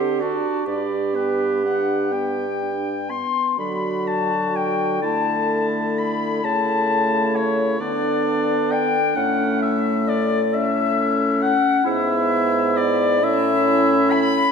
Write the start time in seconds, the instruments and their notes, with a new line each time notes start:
Already playing: bassoon D3, french horn C4, clarinet G4, oboe C5, flute F#5
0.20 french horn D4, clarinet F#4, oboe D5, flute A5
0.66 bassoon G2, french horn D4, clarinet G4, oboe D5, flute B5
1.15 french horn B3, oboe B4, flute G5
1.65 french horn D4, oboe F#5, flute F#5
2.11 french horn B3, oboe G5, flute G5
2.60 french horn D4
3.09 french horn B3, flute C6, oboe C6
3.57 bassoon D3, french horn F#3, clarinet F#4, flute B5, oboe B5
4.06 flute A5, oboe A5
4.55 flute G5, oboe G5
5.02 french horn A3, clarinet E4, oboe A5, flute A5
5.97 flute B5, oboe B5
6.43 bassoon C#3, french horn A3, flute A5, oboe A5
7.35 flute C#5, oboe C#5
7.80 bassoon D3, french horn B3, clarinet D4, oboe D5, flute D5
8.71 oboe G5, flute G5
9.15 bassoon A2, french horn A3, clarinet C#4, flute F#5, oboe F#5
9.59 flute E5, oboe E5
10.07 flute D5, oboe D5
10.53 clarinet C#4, oboe E5, flute E5
11.41 flute F#5, oboe F#5
11.84 bassoon G#2, french horn B3, clarinet E4, oboe E5, flute E5
12.77 oboe D5, flute D5
13.21 bassoon A2, french horn C#4, clarinet E4, flute E5, oboe E5
14.10 oboe B5, flute B5